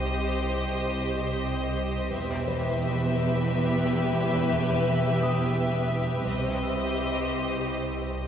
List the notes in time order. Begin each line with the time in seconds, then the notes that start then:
Already playing: C2 D#4 G4 C5 D#5
2.12 E1 E2 G4 B4 E5
2.48 B4
5.23 G4 D#6
6.27 C2 G4 C5 D#5